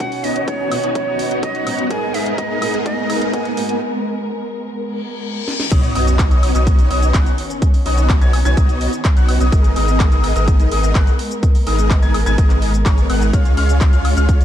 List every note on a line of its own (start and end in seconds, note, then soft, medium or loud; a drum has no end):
0.00 0.68 B2 medium
0.00 1.87 D#3 medium
0.00 0.68 B3 medium
0.00 5.67 B3 medium
0.00 1.87 C#4 medium
0.00 0.69 C#4 medium
0.00 0.69 D#4 medium
0.00 0.69 F#4 loud
0.00 0.25 F#5 loud
0.00 kick loud
0.00 closed hi-hat medium
0.00 riser medium
0.12 open hi-hat medium
0.24 0.57 B1 loud
0.24 0.57 B3 medium
0.24 0.57 D#4 medium
0.24 0.57 F#4 medium
0.24 0.57 C#5 medium
0.24 0.49 D#5 loud
0.24 0.57 D#5 medium
0.24 open hi-hat loud
0.36 closed hi-hat medium
0.47 0.95 C#5 medium
0.47 kick loud
0.47 closed hi-hat medium
0.60 0.75 B3 medium
0.60 0.75 D#4 medium
0.60 0.75 F#4 medium
0.60 0.75 C#5 medium
0.60 0.75 G#5 loud
0.70 1.63 B2 medium
0.70 1.64 B3 medium
0.70 1.64 C#4 medium
0.70 1.64 D#4 medium
0.70 1.64 F#4 loud
0.70 open hi-hat loud
0.70 high woodblock medium
0.83 0.93 B1 medium
0.83 0.92 B3 loud
0.83 0.92 D#4 medium
0.83 0.93 F#4 medium
0.83 0.92 C#5 medium
0.83 0.92 G#5 loud
0.83 closed hi-hat medium
0.95 1.29 B1 loud
0.95 1.28 B3 medium
0.95 1.28 D#4 medium
0.95 1.28 F#4 medium
0.95 1.40 C#5 loud
0.95 1.28 C#5 medium
0.95 1.28 D#5 medium
0.95 kick loud
0.95 closed hi-hat medium
1.19 open hi-hat loud
1.31 1.52 B1 loud
1.31 1.52 B3 medium
1.31 1.52 D#4 medium
1.31 1.52 F#4 medium
1.31 1.52 C#5 medium
1.31 1.52 D#5 medium
1.31 closed hi-hat medium
1.43 1.87 D#5 loud
1.43 kick loud
1.43 closed hi-hat medium
1.55 1.88 B3 medium
1.55 1.88 D#4 medium
1.55 1.88 F#4 medium
1.55 1.88 C#5 medium
1.55 1.88 F#5 medium
1.55 closed hi-hat soft
1.66 1.87 G#2 medium
1.66 1.88 B3 medium
1.66 1.88 C#4 medium
1.66 1.88 D#4 medium
1.66 1.88 F#4 medium
1.66 open hi-hat loud
1.66 high woodblock medium
1.79 closed hi-hat medium
1.89 2.58 G#2 medium
1.89 5.68 G#3 medium
1.89 2.59 B3 medium
1.89 2.12 B3 medium
1.89 2.12 D#4 medium
1.89 2.59 D#4 medium
1.89 2.12 G#4 medium
1.89 2.60 G#4 loud
1.89 2.59 A#4 medium
1.89 5.68 A#4 medium
1.89 2.12 A#4 medium
1.89 2.12 D#5 medium
1.89 2.16 G#5 loud
1.89 kick loud
1.89 closed hi-hat medium
2.14 2.47 B3 medium
2.14 2.47 D#4 medium
2.14 2.47 G#4 medium
2.14 2.47 A#4 medium
2.14 2.47 D#5 loud
2.14 2.40 E5 medium
2.14 open hi-hat loud
2.26 closed hi-hat medium
2.38 2.85 D#5 loud
2.38 kick loud
2.38 closed hi-hat medium
2.50 2.71 B3 medium
2.50 2.71 D#4 medium
2.50 2.71 G#4 medium
2.50 2.71 A#4 medium
2.50 2.71 D#5 medium
2.61 3.54 G#2 loud
2.61 3.54 B3 medium
2.61 3.55 D#4 medium
2.61 3.55 G#4 loud
2.61 3.54 A#4 medium
2.61 open hi-hat loud
2.61 high woodblock medium
2.74 3.07 G#1 loud
2.74 3.07 B3 loud
2.74 3.07 D#4 medium
2.74 3.07 G#4 medium
2.74 3.07 A#4 medium
2.74 3.07 D#5 loud
2.74 closed hi-hat medium
2.86 3.30 D#5 loud
2.86 kick loud
2.86 closed hi-hat medium
3.10 3.31 B3 medium
3.10 3.31 D#4 medium
3.10 3.31 G#4 medium
3.10 3.31 A#4 medium
3.10 3.31 D#5 loud
3.10 open hi-hat loud
3.10 high woodblock medium
3.22 closed hi-hat medium
3.33 3.49 B3 medium
3.33 3.49 D#4 medium
3.33 3.49 G#4 medium
3.33 3.49 A#4 medium
3.33 3.49 F#5 medium
3.33 3.78 G#5 loud
3.33 kick loud
3.33 closed hi-hat medium
3.45 closed hi-hat soft
3.57 3.78 G#2 medium
3.57 3.78 A#3 medium
3.57 3.78 B3 medium
3.57 3.78 D#4 medium
3.57 3.79 F#4 medium
3.57 open hi-hat loud
3.69 closed hi-hat medium
4.76 reverse cymbal medium
5.48 snare medium
5.60 snare medium
5.71 5.93 B1 loud
5.71 9.49 D#3 medium
5.71 13.29 B3 medium
5.71 5.92 B3 medium
5.71 9.49 C#4 loud
5.71 5.92 D#4 medium
5.71 5.92 F#4 medium
5.71 5.92 C#5 medium
5.71 5.93 D#5 medium
5.71 5.93 D#6 medium
5.71 kick loud
5.71 closed hi-hat loud
5.71 crash loud
5.71 sub drop medium
5.71 shaker medium
5.83 closed hi-hat soft
5.83 shaker soft
5.95 6.29 B1 loud
5.95 6.28 B3 medium
5.95 6.28 D#4 medium
5.95 6.28 F#4 medium
5.95 6.28 C#5 medium
5.95 6.28 D#5 loud
5.95 6.28 D#6 loud
5.95 open hi-hat loud
6.07 closed hi-hat soft
6.07 shaker medium
6.19 kick loud
6.19 clap loud
6.19 closed hi-hat loud
6.19 shaker medium
6.31 6.52 B1 loud
6.31 6.52 B3 medium
6.31 6.52 D#4 medium
6.31 6.52 F#4 medium
6.31 6.52 C#5 medium
6.31 6.52 D#5 medium
6.31 6.52 D#6 medium
6.31 closed hi-hat soft
6.31 shaker soft
6.43 open hi-hat loud
6.43 high woodblock medium
6.55 6.88 B1 loud
6.55 6.88 B3 loud
6.55 6.88 D#4 medium
6.55 6.88 F#4 medium
6.55 6.88 C#5 medium
6.55 6.88 D#5 loud
6.55 6.88 D#6 loud
6.55 closed hi-hat soft
6.55 shaker medium
6.67 kick loud
6.67 closed hi-hat medium
6.67 shaker medium
6.79 closed hi-hat soft
6.79 shaker soft
6.91 7.12 B1 loud
6.91 7.12 B3 medium
6.91 7.12 D#4 medium
6.91 7.12 F#4 medium
6.91 7.12 C#5 medium
6.91 7.12 D#5 loud
6.91 7.12 D#6 loud
6.91 open hi-hat loud
7.03 closed hi-hat soft
7.03 shaker medium
7.14 7.28 B1 loud
7.14 7.30 B3 medium
7.14 7.30 D#4 medium
7.14 7.30 F#4 medium
7.14 7.30 C#5 medium
7.14 7.30 F#5 medium
7.14 7.30 F#6 medium
7.14 kick loud
7.14 clap loud
7.14 closed hi-hat loud
7.14 shaker medium
7.26 closed hi-hat soft
7.26 shaker soft
7.38 open hi-hat loud
7.50 closed hi-hat soft
7.50 shaker medium
7.62 kick loud
7.62 closed hi-hat loud
7.62 shaker medium
7.74 open hi-hat medium
7.74 shaker soft
7.86 8.19 B1 loud
7.86 8.19 B3 medium
7.86 8.19 D#4 medium
7.86 8.19 F#4 medium
7.86 8.19 C#5 medium
7.86 8.19 D#5 medium
7.86 8.19 D#6 medium
7.86 open hi-hat loud
7.98 closed hi-hat soft
7.98 shaker medium
8.10 kick loud
8.10 clap loud
8.10 closed hi-hat medium
8.10 shaker medium
8.21 8.43 B1 loud
8.21 8.37 B3 medium
8.21 8.37 D#4 medium
8.21 8.37 F#4 medium
8.21 8.37 C#5 medium
8.21 8.37 G#5 loud
8.21 8.37 G#6 loud
8.21 closed hi-hat soft
8.21 shaker soft
8.33 open hi-hat loud
8.33 high woodblock medium
8.45 8.55 B1 loud
8.45 8.54 B3 loud
8.45 8.54 D#4 medium
8.45 8.54 F#4 medium
8.45 8.54 C#5 medium
8.45 8.54 G#5 loud
8.45 8.54 G#6 loud
8.45 closed hi-hat soft
8.45 shaker medium
8.57 8.88 B1 loud
8.57 8.90 B3 medium
8.57 8.90 D#4 medium
8.57 8.90 F#4 medium
8.57 8.90 C#5 medium
8.57 8.90 D#5 medium
8.57 8.90 D#6 medium
8.57 kick loud
8.57 closed hi-hat medium
8.57 shaker medium
8.69 closed hi-hat soft
8.69 shaker soft
8.81 open hi-hat loud
8.93 closed hi-hat soft
8.93 shaker medium
9.05 kick loud
9.05 clap loud
9.05 closed hi-hat medium
9.05 shaker medium
9.17 9.38 B1 loud
9.17 9.38 B3 medium
9.17 9.38 D#4 medium
9.17 9.38 F#4 medium
9.17 9.38 C#5 medium
9.17 9.38 F#5 medium
9.17 9.38 F#6 medium
9.17 closed hi-hat soft
9.17 shaker soft
9.29 open hi-hat loud
9.29 high woodblock medium
9.40 9.50 B1 loud
9.40 9.51 B3 medium
9.40 9.51 D#4 medium
9.40 9.51 F#4 medium
9.40 9.51 C#5 medium
9.40 9.51 D#5 medium
9.40 9.51 D#6 medium
9.40 closed hi-hat soft
9.40 shaker medium
9.52 9.74 G#1 loud
9.52 14.45 G#3 medium
9.52 9.73 B3 medium
9.52 9.73 D#4 medium
9.52 9.73 G#4 medium
9.52 9.73 A#4 medium
9.52 13.30 A#4 medium
9.52 9.73 D#5 medium
9.52 kick loud
9.52 closed hi-hat medium
9.52 shaker medium
9.64 closed hi-hat soft
9.64 shaker soft
9.76 10.10 G#1 loud
9.76 10.09 B3 loud
9.76 10.09 D#4 medium
9.76 10.09 G#4 medium
9.76 10.09 A#4 medium
9.76 10.09 D#5 loud
9.76 10.09 D#6 loud
9.76 open hi-hat loud
9.88 closed hi-hat soft
9.88 shaker medium
10.00 kick loud
10.00 clap loud
10.00 closed hi-hat medium
10.00 shaker medium
10.12 10.33 G#1 medium
10.12 10.33 B3 medium
10.12 10.33 D#4 medium
10.12 10.33 G#4 medium
10.12 10.33 A#4 medium
10.12 10.33 D#5 medium
10.12 10.33 D#6 medium
10.12 closed hi-hat soft
10.12 shaker soft
10.24 open hi-hat loud
10.24 high woodblock medium
10.36 10.69 G#1 loud
10.36 10.69 B3 loud
10.36 10.69 D#4 medium
10.36 10.69 G#4 medium
10.36 10.69 A#4 medium
10.36 10.69 D#5 loud
10.36 10.69 D#6 loud
10.36 closed hi-hat soft
10.36 shaker medium
10.48 kick loud
10.48 closed hi-hat medium
10.48 shaker medium
10.60 closed hi-hat soft
10.60 shaker soft
10.71 10.93 G#1 loud
10.71 10.92 B3 medium
10.71 10.92 D#4 medium
10.71 10.92 G#4 medium
10.71 10.92 A#4 medium
10.71 10.92 D#5 loud
10.71 10.92 D#6 loud
10.71 open hi-hat loud
10.83 closed hi-hat soft
10.83 shaker medium
10.95 11.09 G#1 medium
10.95 11.11 B3 medium
10.95 11.11 D#4 medium
10.95 11.11 G#4 medium
10.95 11.11 A#4 medium
10.95 11.11 F#5 medium
10.95 11.11 F#6 medium
10.95 kick loud
10.95 clap loud
10.95 closed hi-hat medium
10.95 shaker medium
11.07 closed hi-hat soft
11.07 shaker soft
11.19 open hi-hat loud
11.31 closed hi-hat soft
11.31 shaker medium
11.43 kick loud
11.43 closed hi-hat medium
11.43 shaker medium
11.55 open hi-hat medium
11.55 shaker soft
11.67 12.00 G#1 loud
11.67 12.00 B3 medium
11.67 12.00 D#4 medium
11.67 12.00 G#4 medium
11.67 12.00 A#4 medium
11.67 12.00 D#5 medium
11.67 12.00 D#6 loud
11.67 open hi-hat loud
11.79 closed hi-hat soft
11.79 shaker medium
11.91 kick loud
11.91 clap loud
11.91 closed hi-hat medium
11.91 shaker medium
12.02 12.24 G#1 loud
12.02 12.18 B3 medium
12.02 12.18 D#4 medium
12.02 12.18 G#4 medium
12.02 12.18 A#4 medium
12.02 12.18 G#5 medium
12.02 12.18 G#6 loud
12.02 closed hi-hat soft
12.02 shaker soft
12.14 open hi-hat loud
12.14 high woodblock medium
12.26 12.36 G#1 loud
12.26 12.35 B3 loud
12.26 12.35 D#4 medium
12.26 12.35 G#4 medium
12.26 12.35 A#4 medium
12.26 12.35 G#5 loud
12.26 12.35 G#6 loud
12.26 closed hi-hat soft
12.26 shaker medium
12.38 12.83 G#1 loud
12.38 12.71 B3 medium
12.38 12.71 D#4 medium
12.38 12.71 G#4 medium
12.38 12.71 A#4 medium
12.38 12.71 D#5 medium
12.38 12.71 D#6 medium
12.38 kick loud
12.38 closed hi-hat medium
12.38 shaker medium
12.50 clap soft
12.50 closed hi-hat soft
12.50 shaker soft
12.62 open hi-hat loud
12.74 closed hi-hat soft
12.74 shaker medium
12.86 13.07 G#1 medium
12.86 13.06 B3 medium
12.86 13.06 D#4 medium
12.86 13.06 G#4 medium
12.86 13.06 A#4 medium
12.86 13.06 C#5 medium
12.86 13.06 C#6 medium
12.86 kick loud
12.86 clap loud
12.86 closed hi-hat medium
12.86 shaker medium
12.98 closed hi-hat soft
12.98 shaker soft
13.09 13.31 G#1 loud
13.09 13.31 B3 medium
13.09 13.31 D#4 medium
13.09 13.31 G#4 medium
13.09 13.31 A#4 medium
13.09 13.31 F#5 medium
13.09 13.31 F#6 medium
13.09 open hi-hat loud
13.09 high woodblock medium
13.22 shaker medium
13.33 13.55 C#2 loud
13.33 14.45 C#3 medium
13.33 13.54 G#3 medium
13.33 13.54 C#4 medium
13.33 13.54 F4 medium
13.33 14.45 F4 medium
13.33 13.54 C#5 medium
13.33 13.54 F5 medium
13.33 13.54 F6 medium
13.33 kick loud
13.33 closed hi-hat medium
13.33 shaker medium
13.45 closed hi-hat soft
13.45 shaker soft
13.57 13.91 C#2 loud
13.57 13.90 G#3 medium
13.57 13.90 C#4 medium
13.57 13.90 F4 medium
13.57 13.90 C#5 medium
13.57 13.90 F5 loud
13.57 13.90 F6 loud
13.57 open hi-hat loud
13.69 closed hi-hat soft
13.69 shaker medium
13.81 kick loud
13.81 clap loud
13.81 closed hi-hat medium
13.81 shaker medium
13.93 14.14 C#2 loud
13.93 14.14 G#3 medium
13.93 14.14 C#4 medium
13.93 14.14 F4 medium
13.93 14.14 C#5 medium
13.93 14.14 F5 medium
13.93 14.14 F6 medium
13.93 closed hi-hat soft
13.93 shaker soft
14.05 open hi-hat loud
14.05 high woodblock medium
14.17 14.45 C#2 loud
14.17 14.45 G#3 loud
14.17 14.45 C#4 medium
14.17 14.45 F4 medium
14.17 14.45 C#5 medium
14.17 14.45 F5 loud
14.17 14.45 F6 loud
14.17 closed hi-hat soft
14.17 shaker medium
14.29 kick loud
14.29 closed hi-hat medium
14.29 shaker medium
14.41 closed hi-hat soft
14.41 shaker soft